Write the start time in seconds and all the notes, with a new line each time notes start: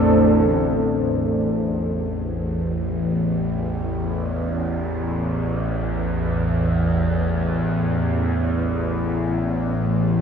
Already playing: A1 E2 A3 D4 A4 C5 D5
0.92 A1 E2